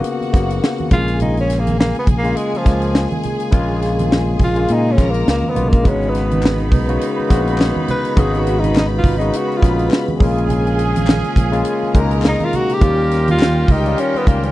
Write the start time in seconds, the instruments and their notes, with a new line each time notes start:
Already playing: tine electric piano C#3 A#3 B3 F4 F#4
0.04 string section F#4 F#5, closed hi-hat
0.21 closed hi-hat, muted conga
0.32 fingered electric bass F#1, tine electric piano C#3 A#3 B3 F#4, kick, snare, closed hi-hat
0.50 closed hi-hat
0.64 snare, muted conga
0.78 closed hi-hat, high conga
0.90 fingered electric bass A#1, tine electric piano C#3 G#3 A#3 F4, tenor saxophone F4, string section G#4 G#5, kick, closed hi-hat, low conga
1.08 closed hi-hat
1.20 tenor saxophone D#4, closed hi-hat, low conga
1.37 tenor saxophone C#4, closed hi-hat, muted conga
1.50 snare, closed hi-hat
1.59 tenor saxophone A#3
1.67 closed hi-hat, high conga
1.80 tenor saxophone A#3, snare, high conga
1.95 closed hi-hat, muted conga
1.99 tenor saxophone B3
2.07 fingered electric bass A#1, kick, closed hi-hat, low conga
2.17 tenor saxophone A#3
2.23 tine electric piano C#3 G#3 A#3 F4, closed hi-hat
2.37 tenor saxophone G#3, closed hi-hat, muted conga
2.53 tenor saxophone F3, closed hi-hat, muted conga
2.64 fingered electric bass C#2, tine electric piano C#3 G#3 A#3 F4, kick, snare, closed hi-hat
2.82 closed hi-hat
2.95 snare
3.10 closed hi-hat, high conga
3.23 closed hi-hat, low conga
3.40 closed hi-hat
3.51 fingered electric bass A#1, tine electric piano C#3 G#3 A#3 F4, kick, closed hi-hat, muted conga, low conga
3.70 muted conga
3.82 snare, closed hi-hat
3.99 closed hi-hat, high conga
4.12 snare, muted conga, high conga
4.39 fingered electric bass A#1, kick, open hi-hat, low conga
4.44 tenor saxophone F4
4.55 tine electric piano C#3 G#3 A#3 F4, closed hi-hat
4.68 fingered electric bass A#2, closed hi-hat
4.72 tenor saxophone D#4
4.92 tenor saxophone C#4
4.97 fingered electric bass A#1, tine electric piano C#3 G#3 A#3 F4, string section A#4 A#5, kick, snare, closed hi-hat, high conga
5.10 tenor saxophone A#3, closed hi-hat
5.27 fingered electric bass C#2, tenor saxophone A#3, snare, muted conga
5.44 muted conga, high conga
5.50 tenor saxophone B3
5.55 fingered electric bass B1, tine electric piano C#3 G#3 A#3 F4, closed hi-hat, low conga
5.69 fingered electric bass A#1, tenor saxophone A#3, kick, closed hi-hat
5.84 fingered electric bass G#1, tine electric piano C#3 G#3 B3 F#4, horn section D#3 B3 D#4, string section B4 B5, kick, closed hi-hat, muted conga, low conga
5.89 tenor saxophone C#4
6.02 closed hi-hat, muted conga
6.09 tenor saxophone B3
6.15 snare, closed hi-hat
6.31 closed hi-hat, high conga
6.43 snare, clap, muted conga, high conga
6.59 closed hi-hat, muted conga
6.72 fingered electric bass B1, kick, open hi-hat, low conga
6.88 tine electric piano C#3 G#3 B3 F#4, closed hi-hat
7.01 closed hi-hat, muted conga
7.20 muted conga
7.29 fingered electric bass A#1, tine electric piano C#3 G#3 B3 F#4, kick, snare, closed hi-hat
7.47 closed hi-hat
7.58 snare, clap
7.76 muted conga, high conga
7.88 tenor saxophone B4, closed hi-hat, low conga
8.05 closed hi-hat
8.16 fingered electric bass G#1, tine electric piano C#3 G#3 B3 F#4, tenor saxophone G#4, kick, closed hi-hat, low conga
8.34 tenor saxophone F#4, closed hi-hat
8.47 closed hi-hat
8.59 tenor saxophone D#4
8.64 closed hi-hat, high conga
8.76 tenor saxophone D#4, snare, clap, high conga
8.98 tenor saxophone F4
9.04 fingered electric bass G#1, kick, open hi-hat, low conga
9.18 tine electric piano C#3 G#3 B3 F#4, tenor saxophone D#4, closed hi-hat
9.33 tenor saxophone F#4, closed hi-hat, muted conga
9.52 closed hi-hat
9.57 tenor saxophone F4
9.62 fingered electric bass A#1, tine electric piano C#3 G#3 B3 G#4, kick, snare, closed hi-hat
9.79 closed hi-hat
9.91 snare, clap, muted conga
10.08 closed hi-hat, high conga
10.19 fingered electric bass A#1, tine electric piano C#3 G#3 A#3 F4, horn section C#4 F4 G#4, string section G#4 G#5, kick, open hi-hat, low conga
10.38 closed hi-hat
10.49 closed hi-hat, muted conga, low conga
10.67 closed hi-hat
10.79 closed hi-hat
10.96 closed hi-hat, high conga
11.07 snare, clap, muted conga, high conga
11.24 closed hi-hat, muted conga
11.36 fingered electric bass A#1, kick, closed hi-hat, low conga
11.51 tine electric piano C#3 G#3 A#3 F4, closed hi-hat
11.65 closed hi-hat, muted conga
11.83 muted conga
11.94 fingered electric bass C#2, tine electric piano B2 G#3 A#3 D#4, string section A#4 A#5, kick, closed hi-hat
12.00 tine electric piano C#3
12.11 closed hi-hat
12.22 snare, clap, muted conga
12.28 tenor saxophone D#4
12.40 closed hi-hat, high conga
12.45 tenor saxophone F4
12.53 tenor saxophone F#4, closed hi-hat, low conga
12.69 closed hi-hat
12.74 tenor saxophone G4
12.80 fingered electric bass D#2, tine electric piano D#3 F3 C#4 F4, horn section F4 G4 A#4, string section G4 G5, kick, closed hi-hat, muted conga, low conga
12.87 tine electric piano G3
12.99 muted conga
13.11 snare, closed hi-hat
13.28 tenor saxophone F4, closed hi-hat, high conga
13.40 snare, clap, high conga
13.68 fingered electric bass C#2, tenor saxophone D#4, kick, open hi-hat, low conga
13.85 tine electric piano D#3 G3 C#4 F4, closed hi-hat
13.98 tenor saxophone C#4, closed hi-hat
14.15 tenor saxophone B3, closed hi-hat, muted conga
14.25 fingered electric bass C#2, tine electric piano D#3 G3 C#4 F4, tenor saxophone A#3, kick, closed hi-hat, high conga
14.43 tenor saxophone C#4, closed hi-hat